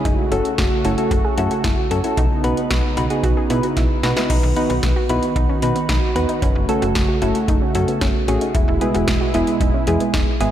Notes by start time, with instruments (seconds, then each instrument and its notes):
Already playing: analog synth pad C#3
0.05 fm bass F#1, analog synth pad A3 F#4, synth pluck D#4, kick, closed hi-hat
0.32 fm bass F#1, synth keys A3 C#4 F#4 A4, synth pluck C#4, closed hi-hat
0.45 closed hi-hat
0.58 fm bass F#1, synth pluck F#4, kick, snare, closed hi-hat
0.85 fm bass F#1, synth keys A3 C#4 F#4 A4, synth pluck E4, closed hi-hat
0.98 synth keys A3 C#4 F#4 A4, closed hi-hat
1.11 fm bass F#1, synth pluck F#4, kick, closed hi-hat
1.25 synth pluck G#4
1.38 fm bass F#2, synth keys A3 C#4 F#4 A4, synth pluck E4, closed hi-hat
1.51 synth pluck F#4, closed hi-hat
1.64 fm bass F#1, synth pluck E4, kick, snare, closed hi-hat
1.91 fm bass F#2, synth keys A3 C#4 F#4 A4, synth pluck F#4, closed hi-hat
2.04 synth keys A3 C#4 F#4 A4, synth pluck E4, closed hi-hat
2.17 fm bass B1, analog synth pad C#3 B3 D#4, synth pluck D#4, kick, closed hi-hat
2.44 fm bass B1, synth keys B3 D#4 F#4 B4, synth pluck B3, closed hi-hat
2.57 closed hi-hat
2.71 fm bass B1, synth pluck F#4, kick, snare, closed hi-hat
2.97 fm bass B1, synth keys B3 D#4 F#4 B4, synth pluck D#4, closed hi-hat
3.10 synth keys B3 D#4 F#4 G#4, closed hi-hat
3.23 fm bass B1, synth pluck F#4, kick, closed hi-hat
3.37 synth pluck G#4
3.50 fm bass B2, synth keys B3 D#4 F#4 B4, synth pluck E4, closed hi-hat
3.63 synth pluck F#4, closed hi-hat
3.77 fm bass B1, synth pluck E4, kick, snare, closed hi-hat
4.03 fm bass B2, synth keys B3 D#4 F#4 B4, synth pluck F#4, snare, closed hi-hat
4.16 synth keys B3 D#4 F#4 B4, synth pluck E4, snare, closed hi-hat
4.30 fm bass B1, analog synth pad D#3 B3 F#4, synth pluck D#4, kick, closed hi-hat, crash
4.43 fm bass B1
4.56 synth keys B3 D#4 F#4 B4, synth pluck D#4, closed hi-hat
4.70 fm bass B1, synth pluck F#4, closed hi-hat
4.83 fm bass B1, kick, snare, closed hi-hat
4.96 synth pluck F#4
5.09 fm bass B1, synth keys B3 D#4 F#4 B4, synth pluck E4, closed hi-hat
5.23 closed hi-hat
5.36 fm bass B1, synth pluck D#4, kick, closed hi-hat
5.49 synth pluck C#4
5.62 fm bass B2, synth keys B3 D#4 F#4 B4, closed hi-hat
5.76 synth pluck B3, closed hi-hat
5.89 fm bass B1, synth pluck D#4, kick, snare, closed hi-hat
6.16 fm bass D#2, synth keys B3 D#4 F#4 B4, synth pluck F#4, closed hi-hat
6.29 synth pluck D#4, closed hi-hat
6.42 fm bass F#1, analog synth pad C#3 A3, synth pluck C#4, kick, closed hi-hat
6.55 fm bass F#1
6.69 synth keys A3 C#4 F#4 A4, synth pluck C#4, closed hi-hat
6.82 fm bass F#1, synth pluck F#4, closed hi-hat
6.95 fm bass F#1, kick, snare, closed hi-hat
7.09 synth pluck F#4
7.22 fm bass F#1, synth keys A3 C#4 F#4 A4, synth pluck E4, closed hi-hat
7.35 closed hi-hat
7.48 fm bass F#1, synth pluck D#4, kick, closed hi-hat
7.62 synth pluck C#4
7.75 fm bass F#2, synth keys A3 C#4 F#4 A4, closed hi-hat
7.88 synth pluck B3, closed hi-hat
8.01 fm bass F#1, synth pluck C#4, kick, snare, closed hi-hat
8.28 fm bass A1, synth keys A3 C#4 F#4 G#4, synth pluck F#4, closed hi-hat
8.41 synth pluck D#4, closed hi-hat
8.55 fm bass E1, analog synth pad B2 G#3 E4, synth pluck E4, kick, closed hi-hat
8.68 fm bass E1
8.81 synth keys G#3 B3 E4 G#4, synth pluck E4, closed hi-hat
8.94 fm bass E1, synth pluck F#4, closed hi-hat
9.08 fm bass E1, kick, snare, closed hi-hat
9.21 synth pluck F#4
9.34 fm bass E1, synth keys G#3 B3 E4 G#4, synth pluck E4, closed hi-hat
9.47 closed hi-hat
9.60 fm bass E1, synth pluck D#4, kick, closed hi-hat
9.74 synth pluck C#4
9.87 fm bass E2, synth keys G#3 B3 E4 G#4, closed hi-hat
10.00 synth pluck B3, closed hi-hat
10.14 fm bass E1, synth pluck D#4, kick, snare, closed hi-hat
10.40 fm bass G#1, synth keys G#3 B3 E4 G#4, synth pluck E4, closed hi-hat